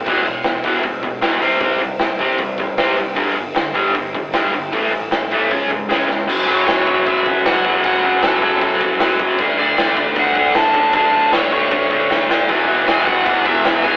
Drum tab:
CC |x-------|--------|--------|--------|
HH |-ooooooo|oooooooo|oooooooo|ooooooo-|
SD |--o---o-|--o---o-|--o---o-|--o---oo|
BD |o--ooo--|o--ooo--|o--ooo--|o--ooo--|

CC |x-x-x-x-|x-x-x-x-|x-x-x-x-|x-x-x---|
HH |--------|--------|--------|--------|
SD |--o---o-|--o---o-|--o---o-|--o---oo|
BD |o--ooo-o|o--ooo-o|o--ooo-o|o--ooo--|

CC |x-x-x-x-|
HH |--------|
SD |--o---o-|
BD |o--ooo-o|